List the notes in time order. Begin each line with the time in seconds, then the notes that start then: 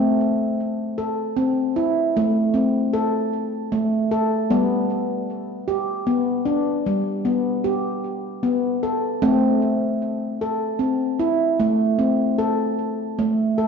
Already playing: A3 C4
0.98 A4
1.37 C4
1.76 E4
2.17 A3
2.54 C4
2.93 A4
3.72 A3
4.11 A4
4.50 G3 B3
5.68 G4
6.07 B3
6.45 D4
6.86 G3
7.25 B3
7.64 G4
8.43 B3
8.83 A4
9.22 A3 C4
10.41 A4
10.79 C4
11.19 E4
11.60 A3
11.99 C4
12.38 A4
13.19 A3
13.58 A4